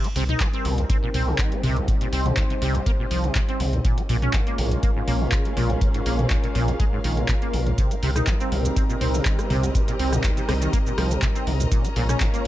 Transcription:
Already playing: G3 C4 D#4 A#4
0.04 C4, closed hi-hat
0.16 C2 C3, open hi-hat
0.29 D#4, closed hi-hat, mid tom
0.35 G4
0.40 D#3, kick, clap, closed hi-hat
0.53 C4, closed hi-hat
0.65 C2 A#2, open hi-hat
0.78 C2, closed hi-hat
0.90 C4, kick, closed hi-hat
1.03 A#2
1.11 C2 C4 D#5, open hi-hat, mid tom
1.27 C3
1.38 D#3, kick, clap, closed hi-hat
1.52 C4, closed hi-hat
1.63 C2 C3, open hi-hat, mid tom
1.76 C2, closed hi-hat
1.88 C#3 C5, kick, closed hi-hat
2.01 A#2, closed hi-hat
2.12 C2 C4, open hi-hat
2.26 C3, closed hi-hat, mid tom
2.37 C2, kick, clap, closed hi-hat
2.50 C3, closed hi-hat
2.62 C2 C3, open hi-hat
2.75 C2, closed hi-hat
2.86 A#3, kick, closed hi-hat
2.99 A#2
3.11 C2 F3, open hi-hat
3.24 C3, closed hi-hat
3.35 C3, kick, clap, closed hi-hat
3.49 C4, closed hi-hat
3.60 C2 C3, open hi-hat
3.73 C2, closed hi-hat, mid tom
3.85 A#2 G#3 C#4 F4 A#4, kick, closed hi-hat
3.98 A#3, closed hi-hat
4.09 A#1 A#2 G#4, open hi-hat
4.22 C#4, closed hi-hat, mid tom
4.33 C#3, kick, clap, closed hi-hat
4.47 A#3, closed hi-hat
4.58 A#1 G#2, open hi-hat
4.71 A#1 F5, closed hi-hat
4.83 A#3, kick, closed hi-hat
4.96 G#2
5.08 A#1 A#3, open hi-hat, mid tom
5.21 A#2
5.32 C#3, kick, clap, closed hi-hat
5.45 A#3, closed hi-hat
5.57 A#1 A#2, open hi-hat, mid tom
5.70 A#1, closed hi-hat
5.81 C3, kick, closed hi-hat
5.94 G#2, closed hi-hat
6.06 A#1 A#3, open hi-hat
6.19 A#2, closed hi-hat, mid tom
6.30 A#1, kick, clap, closed hi-hat
6.44 A#2, closed hi-hat
6.55 A#1 A#2, open hi-hat
6.68 A#1, closed hi-hat
6.80 G#3, kick, closed hi-hat
6.93 G#2
7.04 A#1 D#3, open hi-hat
7.17 A#2, closed hi-hat
7.28 A#2, kick, clap, closed hi-hat
7.42 A#3, closed hi-hat
7.53 A#1 A#2, open hi-hat
7.67 A#1, closed hi-hat, mid tom
7.78 C3 G3 C4 D#4, kick, closed hi-hat, shaker
7.91 C4, closed hi-hat, shaker
8.03 C2 C3, open hi-hat
8.09 G4
8.16 D#4, cross-stick, closed hi-hat, mid tom, shaker
8.27 D#3, kick, clap, closed hi-hat, shaker
8.40 C4, closed hi-hat, shaker
8.52 C2 A#2 A#5, open hi-hat
8.65 C2, closed hi-hat, shaker
8.76 C4 D#5, kick, closed hi-hat, shaker
8.89 A#2, shaker
9.01 C2 C4, open hi-hat, mid tom
9.14 C3, shaker
9.25 D#3, kick, clap, closed hi-hat, shaker
9.39 C4, cross-stick, closed hi-hat, shaker
9.50 C2 C3, open hi-hat, mid tom
9.63 C2, closed hi-hat, shaker
9.75 C#3, kick, closed hi-hat, shaker
9.88 A#2, closed hi-hat, shaker
9.99 C2 C4, open hi-hat
10.13 C3, cross-stick, closed hi-hat, mid tom, shaker
10.24 C2, kick, clap, closed hi-hat, shaker
10.37 C3, closed hi-hat, shaker
10.49 C2 C3, cross-stick, open hi-hat
10.62 D#3, closed hi-hat, shaker
10.73 A#3, kick, closed hi-hat, shaker
10.86 A#2, shaker
10.98 C2 F3, cross-stick, open hi-hat
11.11 C3, closed hi-hat, shaker
11.22 C3, kick, clap, closed hi-hat, shaker
11.35 C4, closed hi-hat, shaker
11.47 C2 C3, open hi-hat
11.60 C2, closed hi-hat, mid tom, shaker
11.71 A#2 G#3 C#4 F4, kick, closed hi-hat, shaker
11.85 A#3, closed hi-hat, shaker
11.93 A#1 A#2 G#4, open hi-hat
12.09 C#4, cross-stick, closed hi-hat, mid tom, shaker
12.20 C#3, kick, clap, closed hi-hat, shaker
12.34 A#3, closed hi-hat, shaker

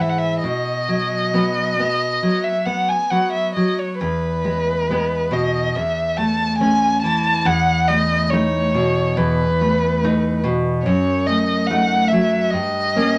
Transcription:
Already playing: G#2
0.00 E3 E5
0.09 F#5
0.19 E5
0.43 B2 D#5
0.88 F#3
1.34 F#3 B3
1.80 B3
2.23 F#3
2.44 E5
2.66 B3 F#5
2.89 G#5
3.11 F#3 B3 F#5
3.33 E5
3.55 F#3 D#5
3.79 C#5
4.00 E2 B4
4.44 G#3
4.91 G#3 B3
5.31 B2 D#5
5.75 E2 E5
6.17 A3 A5
6.58 A3 C#4 G#5
7.03 E3 A5
7.45 E2 F#5
7.88 A3 D#5
8.30 A3 D#4 C#5
8.74 B2
9.17 E2 B4
9.61 A3
10.04 A3 D#4
10.44 B2
10.84 F#2 C#5
11.26 A3 D#5
11.67 A3 D#4 F#5
12.08 E5
12.12 F#3
12.51 G2 D#5
12.96 A#3 C#4

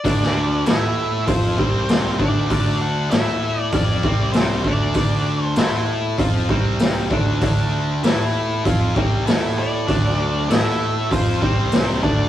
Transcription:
Already playing: D5
0.04 D2 D3 A3 D4, kick, open hi-hat
0.22 snare
0.66 A2 A3 E4 A4 E5, snare, open hi-hat
1.25 F2 F3 C4 F4 C5, kick, open hi-hat
1.57 C2 C3 G3 C4, kick
1.89 snare, open hi-hat
2.18 D2 D3 A3 D4 D5, kick
2.47 D2 D3 A3 D4, kick, open hi-hat
2.82 F#5
3.11 A2 A3 E4 A4 E5, snare, open hi-hat
3.60 D5
3.72 F2 F3 C4 F4 D5, kick, open hi-hat
4.03 C2 C3 G3 C4, kick
4.33 C5, snare, open hi-hat
4.64 D2 D3 A3 D4 D5, kick
4.94 D2 D3 A3 D4, kick, open hi-hat
5.46 C5
5.56 A2 A3 E4 A4, snare, open hi-hat
6.18 F2 F3 C4 F4, kick, open hi-hat
6.49 C2 C3 G3 C4, kick
6.79 snare, open hi-hat
7.10 D2 D3 A3 D4, kick
7.41 D2 D3 A3 D4, kick, open hi-hat
8.03 A2 A3 E4 A4, snare, open hi-hat
8.65 F2 F3 C4 F4, kick, open hi-hat
8.95 C2 C3 G3 C4, kick
9.25 A2 A3 E4 A4, snare, open hi-hat
9.59 D5
9.87 D2 D3 F#3 A3 D4 F#4, kick, open hi-hat
10.48 A2 E3 A3 E4 A4 E5, snare, open hi-hat
11.11 F2 F3 C4 F4 C5, kick, open hi-hat
11.42 C2 C3 G3 C4 G4 C5, kick
11.72 snare, open hi-hat
12.02 D2 D3 A3 D4 F#4 A4 D5, kick

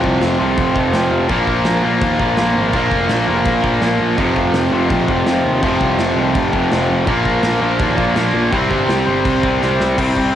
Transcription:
Already playing: F2 C3 F3
0.04 C2, kick
0.21 F1, snare, crash
0.39 C2 F2 C3 F3
0.57 F1, kick, crash
0.75 C3 F3, kick
0.79 F2
0.93 F1 F2 C3, snare, crash
0.97 F3
1.11 F1
1.28 A#1 A#2 F3 A#3, kick, crash
1.47 kick
1.65 A#1, snare, crash
1.83 A#1 A#2 F3 A#3
2.01 D#2, kick, crash
2.19 A#1 A#2 F3 A#3, kick
2.36 A#1 A#2 F3 A#3, snare, crash
2.56 G#1
2.72 A#1 A#2 F3 A#3, kick, crash
2.91 F1, kick
3.09 A#1, snare, crash
3.27 F1 A#2 F3 A#3
3.45 A#1, kick, crash
3.62 A#2 F3 A#3, kick
3.81 A#1 A#2 F3 A#3, snare, crash
4.00 A#1
4.17 F1 F2 C3 F3, kick, crash
4.36 kick
4.54 F1, snare, crash
4.71 F1 C3 F3
4.76 F2
4.90 A#1, kick, crash
5.08 F1 F2 C3 F3, kick
5.25 F1 F2 C3 F3, snare, crash
5.44 D#2
5.61 F1 F2 C3 F3, kick, crash
5.81 C2, kick
5.99 F1, snare, crash
6.16 C2 F2 C3 F3
6.35 F1, kick, crash
6.52 F2 C3 F3, kick
6.70 F1 F2 C3 F3, snare, crash
6.90 F1
7.06 A#1 A#2 F3 A#3, kick, crash
7.25 kick
7.43 A#1, snare, crash
7.61 A#1 A#2 F3 A#3
7.79 D#2, kick, crash
7.97 A#1 A#2 F3 A#3, kick
8.15 A#1 A#2 F3 A#3, snare, crash
8.34 A#1
8.51 C2 C3 G3, kick, crash
8.55 C4
8.71 G1, kick
8.89 C2, snare, crash
9.06 G1 C3 G3 C4
9.25 C2, kick, crash
9.43 C3 G3 C4, kick
9.61 C2 C3 G3 C4, snare
9.80 C2, snare
9.97 C2 C3 G3 C4, kick, crash
10.16 C2, kick, crash

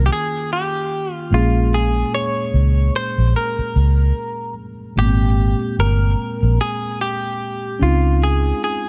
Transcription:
Already playing: D#3 A#3 C#4 F4 G5
0.06 G4
0.13 G#4
0.53 G4
1.13 F4
1.31 A#1 A#2 G#3 A#3 C#4 F4
1.35 G#4
1.74 G#4
2.15 C#5
2.54 C#2
2.96 C5
3.18 A#1
3.36 A#4
3.59 muted fingered electric bass stroke
3.76 C#2
4.96 G#1 A#2 G#3 A#3 B3 G4
5.00 G5
5.05 C4
5.79 G1 A#4
6.43 A#1
6.61 G#4
7.01 G4
7.79 C#2 G#3 C4 C#4 D#4 F4
7.84 F4
8.24 G#4
8.64 G#4

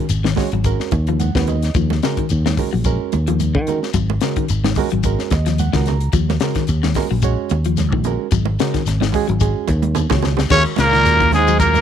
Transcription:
Already playing: D#3
0.09 G#1, closed hi-hat, high conga, shekere
0.24 D#3, snare, high conga
0.36 G#3 C#4 F#4 C#5, kick, snare, open hi-hat, high conga, low conga, shekere
0.52 G#1 F#3, closed hi-hat
0.64 G#3 C#4 F#4 A#4, kick, closed hi-hat, high conga, shekere
0.80 snare
0.91 D#2, kick, closed hi-hat, high conga, shekere
1.07 F3, closed hi-hat, low conga
1.20 F#5, closed hi-hat, high conga, shekere
1.35 D#2 D#3 G#3 C#4 F#4 B4, kick, snare
1.47 D#5, closed hi-hat, low conga, shekere
1.62 snare, closed hi-hat
1.74 D#2 F3, kick, closed hi-hat, shekere
1.90 F#4 A#4, snare, high conga
2.03 C#3 G#3 C#4 F#4 A#4, snare, closed hi-hat, shekere
2.17 D#3, kick, closed hi-hat
2.29 D#2, closed hi-hat, high conga, shekere
2.46 D#3, snare, high conga
2.57 G#3 C#4 F#4 A#4, kick, open hi-hat, high conga, low conga, shekere
2.73 A#1 F#3
2.84 G#3 C#4 F#4 A#4, kick, closed hi-hat, shekere
3.12 D#2, closed hi-hat, high conga, shekere
3.27 F3, closed hi-hat, low conga
3.40 closed hi-hat, high conga, shekere
3.55 D#3, kick
3.67 G#3 C#4 F#4 A#4, closed hi-hat, low conga, shekere
3.83 snare
3.93 G#1 F#3, kick, closed hi-hat, high conga, shekere
4.10 high conga
4.21 C#3 G#3 C#4 F#4 A#4, snare, closed hi-hat, shekere
4.36 D#3, muted fingered electric bass stroke, kick, closed hi-hat
4.48 G#1, closed hi-hat, high conga, shekere
4.64 D#3, snare, high conga
4.75 G#3 C#4 F#4 A#4, kick, open hi-hat, low conga, shekere
4.90 G#1 F#3, closed hi-hat
5.03 G#3 C#4 F#4 A#4, kick, closed hi-hat, high conga, shekere
5.19 snare
5.30 D#2 D#5, kick, snare, closed hi-hat, high conga, shekere
5.46 F3, snare, closed hi-hat
5.58 F#5, closed hi-hat, high conga, shekere
5.73 C#2 D#3 G#3 C#4 F#4 A#4 F#5, kick, snare
5.86 A#5, snare, closed hi-hat, low conga, shekere
6.00 closed hi-hat
6.12 D#2 F3, kick, closed hi-hat, shekere
6.29 F#4 A#4, snare, high conga
6.40 C#3 G#3 C#4 F#4 A#4, snare, closed hi-hat, shekere
6.55 D#3, kick, snare, closed hi-hat
6.67 D#2, closed hi-hat, shekere
6.83 D#3, snare, high conga
6.94 G#3 C#4 F#4 A#4, kick, snare, open hi-hat, low conga, shekere
7.11 A#1 F#3
7.22 G#3 C#4 F#4 C#5, kick, closed hi-hat, high conga, shekere
7.49 D#2, closed hi-hat, high conga, shekere
7.64 F3, closed hi-hat
7.77 snare, closed hi-hat, high conga, shekere
7.92 A#1 D#3, kick, high conga
8.04 G#3 C#4 F#4 A#4, closed hi-hat, low conga, shekere
8.31 G#1 F#3, kick, closed hi-hat, high conga, shekere
8.45 high conga
8.59 C#3 G#3 C#4 F#4 A#4, snare, closed hi-hat, shekere
8.74 D#3, muted fingered electric bass stroke, kick, snare, closed hi-hat
8.86 G#1, snare, closed hi-hat, high conga, shekere
9.00 D#3, snare, high conga
9.12 G#3 C#4 F#4 G#4, kick, open hi-hat, low conga, shekere
9.28 G#1 F#3, closed hi-hat
9.40 G#3 C#4 F#4 G#4, kick, closed hi-hat, shekere
9.68 D#2, kick, closed hi-hat, high conga, shekere
9.82 closed hi-hat, high conga
9.95 closed hi-hat, low conga, shekere
10.10 C#2 D#3 G#3 C#4 F#4 C#5, kick, snare, low conga
10.22 snare, low conga, shekere
10.37 snare, low conga
10.50 D#2 C#3 D#3 G#3 C#4 F#4 A#4 C#5, kick, crash, shekere
10.66 closed hi-hat
10.76 C#2 A#2 C#3 A#3 A#4, snare, closed hi-hat, high conga
10.92 D#3, snare, closed hi-hat, shekere
11.05 D#2 G#3 C#4 F#4 A#4, closed hi-hat, shekere
11.20 D#3, kick, closed hi-hat
11.32 G#2 G#3 G#4, snare, closed hi-hat, high conga, low conga, shekere
11.47 F#3, closed hi-hat, shekere
11.59 A#2 G#3 A#3 C#4 F#4 A#4, kick, closed hi-hat, high conga, shekere
11.74 closed hi-hat, high conga, shekere

